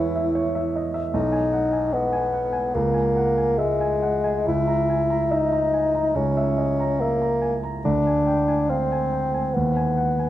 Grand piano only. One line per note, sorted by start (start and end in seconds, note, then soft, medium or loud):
0.00 1.11 E2 soft
0.00 0.15 B4 soft
0.00 0.35 C#5 soft
0.00 0.76 D#5 soft
0.00 0.16 E5 soft
0.16 0.47 E5 soft
0.35 0.67 C#5 soft
0.55 0.87 E5 soft
0.76 0.95 D#5 soft
0.94 1.15 E5 soft
1.14 2.70 B1 soft
1.32 1.65 G#5 soft
1.53 1.74 F#5 soft
1.72 2.05 G#5 soft
1.94 2.26 D#5 soft
2.13 2.46 G#5 soft
2.34 2.54 F#5 soft
2.53 2.74 G#5 soft
2.75 4.44 C#2 soft
2.94 3.28 G#5 soft
3.16 3.38 F#5 soft
3.38 3.72 G#5 soft
3.59 3.94 E5 soft
3.81 4.17 G#5 soft
4.02 4.26 F#5 soft
4.24 4.47 G#5 soft
4.46 6.11 C#2 soft
4.67 5.02 A#5 soft
4.89 5.11 G#5 soft
5.10 5.44 A#5 soft
5.31 5.65 E5 soft
5.52 5.86 A#5 soft
5.74 5.95 G#5 soft
5.95 6.28 A#5 soft
6.15 7.80 C#2 soft
6.37 6.71 E5 soft
6.58 6.79 D#5 soft
6.80 7.13 A#5 soft
7.02 7.35 E5 soft
7.22 7.55 A#5 soft
7.42 7.63 G#5 soft
7.63 7.84 A#5 soft
7.85 9.51 D2 soft
8.07 8.40 G#5 soft
8.27 8.48 G5 soft
8.48 8.82 G#5 soft
8.69 9.03 F5 soft
8.92 9.25 G#5 soft
9.13 9.34 G5 soft
9.34 9.55 G#5 soft
9.56 10.29 D#2 soft
9.76 10.11 G#5 soft
9.97 10.19 F#5 soft
10.19 10.29 G#5 soft